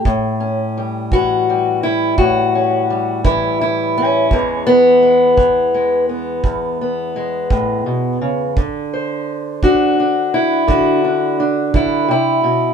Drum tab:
BD |o--o--o--o--|o--o--o--o--|o--o--o--o--|